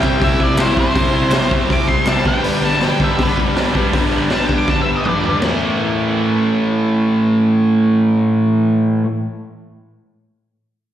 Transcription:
Already playing: C3 G5
0.00 C4 E4, kick, clap
0.04 G3
0.18 C3 G3 C4 E4, kick, open hi-hat
0.24 E5
0.40 D5, kick
0.55 C3 G3 C4, snare, clap, open hi-hat
0.60 E4 C5
0.75 G3 C4 E4 C5, kick
0.93 C3 G3 C4 E4, kick, open hi-hat
1.12 G3 C4 E4
1.30 C3 G3 C4 E4, snare, clap, open hi-hat
1.48 C4 E4, kick
1.53 G3
1.67 C3 G3 C4, kick, open hi-hat
1.71 E4 D6
1.88 C6, kick
2.05 C3 G3 C4 E4 A5, snare, clap, open hi-hat
2.23 G2 D3 G3 B3 D4, kick
2.27 G5
2.41 G2 D3 G3 B3 D4, open hi-hat
2.60 B3 D4
2.64 G3 A5
2.73 snare
2.79 D3 G3 B3, snare, open hi-hat
2.83 D4 G5
2.98 G3 B3 D4, kick
3.04 E5
3.16 G2 D3 G3 B3 D4, kick, open hi-hat
3.23 B4
3.37 kick
3.54 D3 G3 B3, snare, open hi-hat
3.59 D4
3.73 B3 D4, kick
3.78 G3
3.92 G2 D3 G3 B3 D4, kick, open hi-hat
4.13 G3 B3 D4
4.30 D3 G3 B3 D4, snare, open hi-hat
4.34 A5
4.46 D4 G5, kick
4.51 G3 B3
4.58 D6
4.68 G2 D3 G3 B3 A5, kick, snare
4.72 D4
4.82 E5
4.96 D#5
5.05 D3 G3 B3 D4 D5, mid tom
5.20 D4 D5, floor tom
5.25 G3 B3
5.41 A2 E3, snare, floor tom, crash
5.45 A3

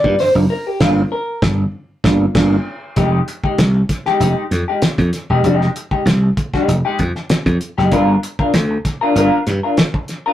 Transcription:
Already playing: D5
0.04 G2 A#3 D4 F4, kick
0.19 G2 D3 C5, snare, open hi-hat
0.35 F#1 A#3 D4 F4
0.50 A#4
0.67 G4
0.80 G1 A#3 D4 F4, kick, snare, crash
1.12 A#4
1.42 G1 G2 D3, kick, snare
2.04 G1 A#3 D4 F4, kick, snare
2.35 G1 A#3 D4 F4, kick, snare, crash
2.96 F1 G#3 D#4 G4, kick, closed hi-hat
3.28 muted clean electric guitar stroke, closed hi-hat
3.44 G#3 D#4 G4, muted slap bass stroke, kick
3.58 C2, muted clean electric guitar stroke, snare, closed hi-hat
3.75 muted clean electric guitar stroke
3.89 kick, snare, closed hi-hat
4.06 G#3 D#4 G4, snare
4.20 F1 G#3 D#4 G4, closed hi-hat
4.51 F2, muted clean electric guitar stroke, snare, closed hi-hat
4.68 G#3 D#4 G4
4.82 muted slap bass stroke, muted clean electric guitar stroke, snare, closed hi-hat
4.98 F2, muted clean electric guitar stroke, kick, closed hi-hat
5.13 snare, closed hi-hat
5.30 E1 G#3 D#4 G4
5.44 F1 G#3 D#4 G4, closed hi-hat
5.62 snare
5.76 muted clean electric guitar stroke, closed hi-hat
5.91 G#3 D#4 G4, muted slap bass stroke, kick
6.06 C2, muted clean electric guitar stroke, snare, closed hi-hat
6.23 muted clean electric guitar stroke
6.37 kick, closed hi-hat
6.54 G#3 D#4 G4, kick, snare
6.68 F1, muted clean electric guitar stroke, closed hi-hat
6.85 G#3 D#4 G4
6.99 F2, muted clean electric guitar stroke, kick, closed hi-hat
7.16 muted clean electric guitar stroke, snare
7.30 muted slap bass stroke, muted clean electric guitar stroke, snare, closed hi-hat
7.46 F2, muted clean electric guitar stroke, kick, closed hi-hat
7.61 closed hi-hat
7.78 F#1 G#3 D#4 G4, snare
7.92 G1 D4 F4 A#4, kick, closed hi-hat
8.23 muted clean electric guitar stroke, closed hi-hat
8.39 D4 F4 A#4, muted slap bass stroke, kick
8.54 D2, muted clean electric guitar stroke, snare, closed hi-hat
8.71 muted clean electric guitar stroke
8.85 kick, snare, closed hi-hat
9.01 D4 F4 A#4
9.15 G1 D4 F4 A#4, closed hi-hat
9.47 G2, muted clean electric guitar stroke, snare, closed hi-hat
9.63 D4 F4 A#4
9.77 muted clean electric guitar stroke, snare, closed hi-hat
9.94 muted clean electric guitar stroke, kick
10.08 snare, closed hi-hat
10.26 D4 F4 A#4

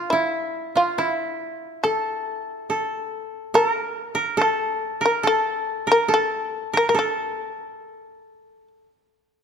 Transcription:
Already playing: F4 A4
0.10 E4
0.76 F4
0.98 E4
1.84 A4
2.68 F4 A4
3.54 A4 A#4
3.68 A#4
4.15 A#4
4.37 A4
4.41 A4
5.01 A#4
5.06 A#4
5.23 A4
5.87 A#4
5.92 A#4
6.08 A4
6.14 A4
6.73 A#4
6.89 A#4
6.95 A4
6.99 A4

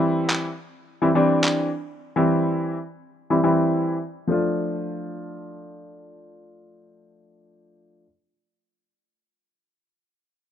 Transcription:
Already playing: E3 G3 C4 E4
0.30 clap
1.02 E3 G3 C4 E4
1.15 E3 G3 C4 D4
1.44 clap
2.16 E3 G3 C4 E4
3.30 E3 G3 C4 E4
3.43 E3 G3 C4 E4
4.27 F3 A3 D4
4.32 F4

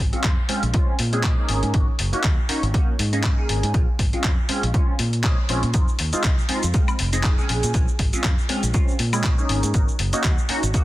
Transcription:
0.00 G#1
0.13 G#3 C4 C#4 F4, muted fingered electric bass stroke, closed hi-hat
0.23 F2, kick, clap, closed hi-hat
0.49 G#3 C4 C#4 F4, muted fingered electric bass stroke, open hi-hat
0.63 A#1, closed hi-hat
0.74 G#3 C4 C#4 F4, kick, closed hi-hat
0.88 muted fingered electric bass stroke
0.99 A#2, open hi-hat
1.12 G#3 C4 C#4 G#4, closed hi-hat
1.23 kick, clap, closed hi-hat
1.38 A#3 C#4 D#4 G#4
1.49 G#1, open hi-hat
1.63 G#2, closed hi-hat
1.74 G#1 A#3 C#4 D#4 F#4, kick, closed hi-hat
1.99 F#1, open hi-hat
2.13 A#3 C#4 D#4 F#4, muted fingered electric bass stroke, closed hi-hat
2.23 D#2, kick, clap, closed hi-hat
2.49 A#3 C#4 D#4 F#4, muted fingered electric bass stroke, open hi-hat
2.63 G#1, closed hi-hat
2.74 A#3 C#4 D#4 F#4, kick, closed hi-hat
2.99 G#2, open hi-hat
3.13 A#3 C#4 D#4 G#4, closed hi-hat
3.23 kick, clap, closed hi-hat
3.38 A#3 C#4 D#4 G#4
3.49 G#1, open hi-hat
3.63 G#2, closed hi-hat
3.74 A#1 G#3 C4 C#4 F4, kick, closed hi-hat
3.88 muted fingered electric bass stroke
3.99 G#1, kick, open hi-hat
4.13 G#3 C4 C#4 F4, muted fingered electric bass stroke, closed hi-hat
4.24 F2, kick, clap, closed hi-hat
4.49 G#3 C4 C#4 F4, muted fingered electric bass stroke, open hi-hat
4.63 A#1, closed hi-hat
4.74 G#3 C4 C#4 F4, kick, closed hi-hat
4.88 muted fingered electric bass stroke
4.99 A#2, open hi-hat
5.13 closed hi-hat
5.24 G#3 C4 C#4 G#4, kick, clap, closed hi-hat
5.49 A#1 G#3 C4 C#4 F4, open hi-hat
5.63 A#2, closed hi-hat
5.74 F2 G#3 C4 D#4 F4, kick, closed hi-hat, cabasa
5.88 cabasa
5.99 D#2, open hi-hat
6.13 G#3 C4 D#4 F4, muted fingered electric bass stroke, closed hi-hat, cabasa
6.23 C2, kick, clap, closed hi-hat, cabasa
6.38 cabasa
6.49 G#3 C4 D#4 F4, muted fingered electric bass stroke, open hi-hat
6.63 F2, closed hi-hat, cabasa
6.74 G#3 C4 D#4 F4, kick, closed hi-hat, cabasa
6.88 cabasa, high woodblock
6.99 F1, open hi-hat
7.12 G#3 C4 D#4 G#4, closed hi-hat, cabasa
7.23 kick, clap, closed hi-hat, cabasa
7.38 G#3 C4 C#4 G#4, cabasa
7.49 A#1, open hi-hat
7.63 A#2, closed hi-hat, cabasa
7.74 A#1 G#3 C4 C#4 F4, kick, closed hi-hat, cabasa
7.88 muted fingered electric bass stroke, cabasa
7.99 G#1, kick, open hi-hat
8.13 G#3 C4 C#4 F4, muted fingered electric bass stroke, closed hi-hat, cabasa
8.24 F2, kick, clap, closed hi-hat, cabasa
8.38 cabasa
8.49 G#3 C4 C#4 F4, muted fingered electric bass stroke, open hi-hat
8.63 A#1, closed hi-hat, cabasa
8.74 G#3 C4 C#4 F4, kick, closed hi-hat, cabasa
8.88 muted fingered electric bass stroke, cabasa
8.99 A#2, open hi-hat
9.13 G#3 C4 C#4 G#4, closed hi-hat, cabasa, high woodblock
9.24 kick, clap, closed hi-hat, cabasa
9.38 A#3 C#4 D#4 G#4, cabasa
9.49 G#1, open hi-hat
9.63 G#2, closed hi-hat, cabasa
9.74 G#1 A#3 C#4 D#4 F#4, kick, closed hi-hat, cabasa
9.88 cabasa
9.99 F#1, open hi-hat
10.13 A#3 C#4 D#4 F#4, closed hi-hat, cabasa
10.23 D#2, kick, clap, closed hi-hat, cabasa
10.38 cabasa
10.49 A#3 C#4 D#4 F#4, muted fingered electric bass stroke, open hi-hat
10.63 G#1, closed hi-hat, cabasa
10.74 A#3 C#4 D#4 F#4, kick, closed hi-hat, cabasa

